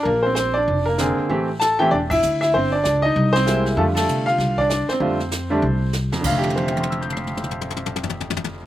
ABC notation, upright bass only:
X:1
M:4/4
L:1/8
Q:"Swing" 1/4=194
K:F
V:1 name="Upright bass" clef=bass
B,,,4 F,,,3 z | A,,,4 E,,,2 D,,2 | G,,,2 _D,,2 C,,4 | F,,2 C,2 C,,3 z |
F,,4 C,,3 E,, | F,,,8- | F,,,8 |]